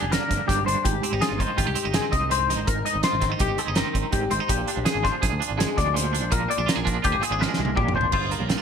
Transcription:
Already playing: clean electric guitar G2 G3 D4 G4 G#4
0.02 picked electric bass F1
0.12 clean electric guitar D3 A#3 A#4, snare, closed hi-hat
0.31 picked electric bass G1, kick, snare, closed hi-hat
0.48 picked electric bass G1, clean electric guitar G2 G4, kick, snare, closed hi-hat
0.66 picked electric bass G1, clean electric guitar D4 C5, closed hi-hat
0.85 picked electric bass G#1, clean electric guitar G#2 G4, kick, closed hi-hat
1.03 clean electric guitar C4, closed hi-hat
1.13 picked electric bass G#1, clean electric guitar D#4
1.21 clean electric guitar F4 G#4, snare, closed hi-hat
1.32 picked electric bass G1
1.40 clean electric guitar D#3 D#4 C5, kick, closed hi-hat
1.58 picked electric bass G#1, clean electric guitar F4 G4, kick, closed hi-hat
1.67 picked electric bass C2, clean electric guitar G4
1.75 clean electric guitar C4, closed hi-hat
1.85 picked electric bass G1, clean electric guitar D#4
1.94 clean electric guitar D#3 C4 G#4, snare, closed hi-hat
2.12 picked electric bass C2, clean electric guitar D#5, kick, closed hi-hat
2.30 clean electric guitar G#2 C5, closed hi-hat
2.50 clean electric guitar D#4, snare, closed hi-hat
2.58 picked electric bass G#1
2.67 picked electric bass G#1, clean electric guitar G#2 A#4, kick, closed hi-hat
2.85 clean electric guitar D#4 D#5, closed hi-hat
2.95 picked electric bass G#1
3.03 clean electric guitar F4 C5, snare, closed hi-hat
3.13 picked electric bass G#1
3.21 clean electric guitar D#3 C4, kick, snare, closed hi-hat
3.32 clean electric guitar D#4
3.39 picked electric bass C2, clean electric guitar G4, kick, closed hi-hat
3.49 picked electric bass G1
3.58 clean electric guitar C4 G#4, closed hi-hat
3.68 picked electric bass G1, clean electric guitar D#4
3.75 clean electric guitar D#3 C4 A#4, snare, closed hi-hat
3.95 picked electric bass G#1, kick, closed hi-hat
4.12 picked electric bass G#1, clean electric guitar G#2 G4, kick, closed hi-hat
4.31 picked electric bass G#1, clean electric guitar C4 C5, closed hi-hat
4.40 clean electric guitar D#4
4.49 picked electric bass A#1, clean electric guitar A#2 G4, kick, closed hi-hat
4.67 clean electric guitar D4, closed hi-hat
4.77 picked electric bass A#1
4.85 clean electric guitar G#4, snare, closed hi-hat
4.95 picked electric bass G#1
5.03 clean electric guitar F3 D4 C5, kick, snare, closed hi-hat
5.22 picked electric bass A#1, clean electric guitar G#4, kick, snare, closed hi-hat
5.32 picked electric bass D2
5.40 clean electric guitar D4, closed hi-hat
5.51 picked electric bass G#1
5.57 clean electric guitar F2 G#3 G#4, snare, closed hi-hat
5.78 picked electric bass D2, clean electric guitar D5, kick, snare, closed hi-hat
5.94 clean electric guitar A#2 C5, snare, closed hi-hat
6.13 clean electric guitar D4, closed hi-hat
6.23 picked electric bass A#1
6.31 picked electric bass A#1, clean electric guitar A#2 A#4, kick, closed hi-hat
6.48 clean electric guitar C4 D5, closed hi-hat
6.58 picked electric bass A#1, clean electric guitar D4
6.66 clean electric guitar F4 A#4, snare, closed hi-hat
6.76 picked electric bass A#1, clean electric guitar G#4
6.84 clean electric guitar F3 D4, kick, closed hi-hat
7.02 picked electric bass D2, clean electric guitar F4 G4, kick, closed hi-hat
7.12 picked electric bass G#1, clean electric guitar G#4
7.21 clean electric guitar C4 G#4, closed hi-hat
7.31 picked electric bass G#1, clean electric guitar D4
7.39 clean electric guitar F2 G#3 A#4, snare
7.54 snare
7.59 picked electric bass C2
7.65 high tom
7.76 picked electric bass A#1, clean electric guitar A#2 G4, kick, mid tom
7.88 mid tom
7.95 picked electric bass G#1, clean electric guitar D4 C5
8.01 floor tom
8.12 picked electric bass G1, clean electric guitar G2 F4 C5, kick, crash
8.31 clean electric guitar A#3 A#4, closed hi-hat
8.40 picked electric bass A#1
8.48 clean electric guitar C4, snare, closed hi-hat
8.58 clean electric guitar D4

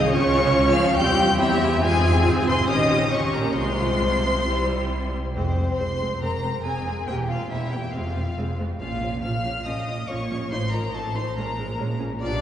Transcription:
Already playing: double bass section C2, violin section D#5 D#6
0.11 double bass section C#2, cello section C#3, viola section C#4 F4, violin section C#5 C#6
0.53 double bass section C#2
0.74 cello section F3, violin section F5 F6
0.96 double bass section E2, cello section G3, viola section C4 G4, violin section G5 G6
1.39 cello section E2, viola section C4 G4, violin section E4 E5
1.82 double bass section F2, cello section G#2, viola section C4 F4, violin section G#4 G#5
2.25 double bass section G#1
2.47 cello section C3, violin section C5 C6
2.68 double bass section A#1, cello section D#3, viola section C#4 G4, violin section D#5 D#6
3.12 cello section C#3, viola section C#4 G4, violin section C#5 C#6
3.34 cello section A#2, violin section A#4 A#5
3.56 double bass section C2, cello section C3, viola section G#3 F4, violin section C5 C6
4.46 double bass section C2, viola section G3 E4
5.35 double bass section F1, cello section F2, viola section G#3 C4, violin section C4 C5
5.57 viola section G#3 C4
5.78 double bass section F1, cello section F2, viola section G#3 C4, violin section C5 C6
6.00 viola section G#3 C4
6.21 double bass section F1, cello section F2, viola section G#3 C4, violin section A#4 A#5
6.43 viola section G#3 C4
6.64 double bass section F1, cello section F2, viola section G#3 C4, violin section G#4 G#5
6.86 viola section G#3 C4
7.07 double bass section E1, cello section E2, viola section A#3 C4, violin section G4 G5
7.29 viola section A#3 C4, violin section F4 F5
7.51 double bass section E1, cello section E2, viola section A#3 C4, violin section E4 E5
7.72 viola section A#3 C4, violin section G4 G5
7.93 double bass section F1, cello section F2, viola section G#3 C4, violin section F4 F5
8.16 viola section G#3 C4
8.37 double bass section F1, cello section F2, viola section G#3 C4
8.59 viola section G#3 C4
8.80 double bass section A#1, cello section A#2, viola section F3 C#4, violin section F4 F5
9.01 viola section F3 C#4
9.23 double bass section A#1, cello section A#2, viola section F3 C#4, violin section F5 F6
9.44 viola section F3 C#4
9.66 double bass section A#1, cello section A#2, viola section F3 C#4, violin section D#5 D#6
9.88 viola section F3 C#4
10.09 double bass section A#1, cello section A#2, viola section F3 C#4, violin section C#5 C#6
10.30 viola section F3 C#4
10.51 double bass section A1, cello section A2, viola section F3 D#4, violin section C5 C6
10.72 viola section F3 D#4, violin section A#4 A#5
10.93 double bass section A1, cello section A2, viola section F3 D#4, violin section A4 A5
11.14 viola section F3 D#4, violin section C5 C6
11.36 double bass section A#1, cello section A#2, viola section G#3 C#4, violin section A#4 A#5
11.57 viola section G#3 C#4
11.79 double bass section A#1, cello section A#2, viola section G#3 C#4
12.00 viola section G#3 C#4
12.21 double bass section B1, cello section B2, viola section F3 F4, violin section D4 D5
12.32 viola section G3 G4

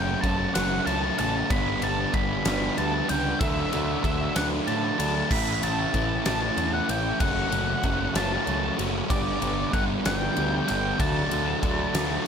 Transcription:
Already playing: picked electric bass F#1, distorted electric guitar F#2 C#3 F#3 A3 C#4, lead electric guitar G5
0.21 picked electric bass F#1, distorted electric guitar F#2 C#3 F#3 A3 C#4, lead electric guitar A5, kick, ride
0.54 picked electric bass F#1, distorted electric guitar F#2 C#3 F#3 A3 C#4, lead electric guitar F#5, snare, ride
0.86 picked electric bass C#2, distorted electric guitar F#2 C#3 F#3 A3 C#4, lead electric guitar A5, ride
1.18 picked electric bass A1, distorted electric guitar F#2 C#3 F#3 A3 C#4, lead electric guitar A5, ride
1.50 picked electric bass G1, distorted electric guitar G2 D3 G3 B3 D4, lead electric guitar B5, kick, ride
1.81 picked electric bass G1, distorted electric guitar G2 D3 G3 B3 D4, lead electric guitar A5, ride
2.13 picked electric bass G1, distorted electric guitar G2 D3 G3 B3 D4, lead electric guitar B5, kick, ride
2.45 picked electric bass G1, distorted electric guitar G2 D3 G3 B3 D4, snare, ride
2.77 picked electric bass D2, distorted electric guitar G2 D3 G3 B3 D4, lead electric guitar A5, ride
3.08 picked electric bass C#2, distorted electric guitar G2 D3 G3 B3 D4, lead electric guitar G5, ride
3.39 picked electric bass D2, distorted electric guitar D3 F#3 A3 D4, lead electric guitar E5, kick, ride
3.72 picked electric bass D2, distorted electric guitar D3 F#3 A3 D4, ride
4.03 picked electric bass D2, distorted electric guitar D3 F#3 A3 D4, lead electric guitar E5, kick, ride
4.35 picked electric bass D2, distorted electric guitar D3 F#3 A3 D4, lead electric guitar F#5, snare, ride
4.67 picked electric bass A2, distorted electric guitar D3 F#3 A3 D4, lead electric guitar A5, ride
4.98 picked electric bass D2, distorted electric guitar D3 F#3 A3 D4, lead electric guitar A5, ride
5.30 picked electric bass A1, distorted electric guitar A2 E3 A3 C#4 E4, lead electric guitar B5, kick, crash
5.61 picked electric bass A1, distorted electric guitar A2 E3 A3 C#4 E4, lead electric guitar A5, ride
5.92 picked electric bass A1, distorted electric guitar A2 E3 A3 C#4 E4, kick, ride
6.25 picked electric bass A1, distorted electric guitar A2 E3 A3 C#4 E4, lead electric guitar A5, snare, ride
6.57 picked electric bass E2, distorted electric guitar A2 E3 A3 C#4 E4, ride
6.74 lead electric guitar F#5
6.88 picked electric bass A1, distorted electric guitar A2 E3 A3 C#4 E4, lead electric guitar G5, ride
7.19 picked electric bass F#1, distorted electric guitar F#2 C#3 F#3 A3 C#4, lead electric guitar F#5, kick, ride
7.51 picked electric bass F#1, distorted electric guitar F#2 C#3 F#3 A3 C#4, ride
7.83 picked electric bass F#1, distorted electric guitar F#2 C#3 F#3 A3 C#4, kick, ride
8.14 picked electric bass F#1, distorted electric guitar F#2 C#3 F#3 A3 C#4, lead electric guitar A5, snare, ride
8.46 picked electric bass C#2, distorted electric guitar F#2 C#3 F#3 A3 C#4, ride
8.78 picked electric bass F#1, distorted electric guitar F#2 C#3 F#3 A3 C#4, ride
9.09 picked electric bass G1, distorted electric guitar G2 D3 G3 B3 D4, lead electric guitar D5, kick, ride
9.40 picked electric bass G1, distorted electric guitar G2 D3 G3 B3 D4, ride
9.71 picked electric bass G1, distorted electric guitar G2 D3 G3 B3 D4, lead electric guitar F#5, kick, ride
10.03 picked electric bass G1, distorted electric guitar G2 D3 G3 B3 D4, lead electric guitar F#5, snare, ride
10.17 lead electric guitar G5
10.34 picked electric bass D2, distorted electric guitar G2 D3 G3 B3 D4, ride
10.66 distorted electric guitar G2 D3 G3 B3 D4, ride
10.70 picked electric bass G1, lead electric guitar G5
10.98 picked electric bass D2, distorted electric guitar D3 F#3 A3 D4, lead electric guitar A5, kick, ride
11.30 picked electric bass D2, distorted electric guitar D3 F#3 A3 D4, ride
11.63 picked electric bass D2, distorted electric guitar D3 F#3 A3 D4, kick, ride
11.94 picked electric bass D2, distorted electric guitar D3 F#3 A3 D4, snare, ride

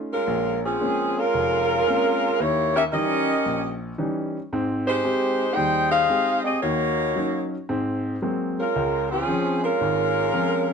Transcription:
Already playing: grand piano A3 C#4 D#4 F4
0.13 saxophone section G#3 C#4 F4 A#4
0.27 grand piano A#1
0.66 saxophone section F3 C4 C#4 G#4
0.81 grand piano G#3 A#3 C4 C#4
1.18 saxophone section G#3 C#4 F4 A#4
1.33 grand piano F1
1.87 grand piano G#3 A#3 C4 C#4
2.40 grand piano D#2, saxophone section A#3 E4 G4 C#5
2.76 saxophone section C#4 G4 A#4 E5
2.92 grand piano E3 G3 C#4 D#4, saxophone section C#4 G4 A#4 D#5
3.46 grand piano A#1
3.98 grand piano E3 G3 C#4 D#4
4.53 grand piano G#2 C4
4.88 saxophone section G#3 D#4 G4 C5
5.04 grand piano G#3 C4 G4
5.54 grand piano D#2 G3, saxophone section D#4 G#4 C5 G5
5.91 saxophone section D#4 G#4 C5 F5
6.10 grand piano G#3 C4 G4
6.45 saxophone section C4 G4 G#4 D#5
6.61 grand piano D#2, saxophone section A#3 D#4 F#4 C#5
7.16 grand piano F#3 C#4 D#4
7.69 grand piano G#2 C4
8.22 grand piano F#3 G#3 A#3 C4
8.59 saxophone section G#3 C#4 F4 A#4
8.76 grand piano C#2
9.11 saxophone section F3 C4 C#4 G#4
9.28 grand piano F3 C4 C#4
9.63 saxophone section G#3 C#4 F4 A#4
9.80 grand piano G#1
10.33 grand piano F3 C4 C#4

